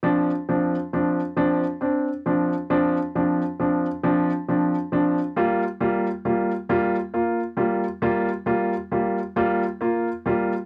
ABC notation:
X:1
M:6/8
L:1/8
Q:3/8=45
K:Dm
V:1 name="Grand piano"
[F,CD] [F,CD] [F,CD] [F,CD] [CD] [F,CD] | [F,CD] [F,CD] [F,CD] [F,CD] [F,CD] [F,CD] | [G,B,F] [G,B,F] [G,B,F] [G,B,F] [B,F] [G,B,F] | [G,B,F] [G,B,F] [G,B,F] [G,B,F] [B,F] [G,B,F] |]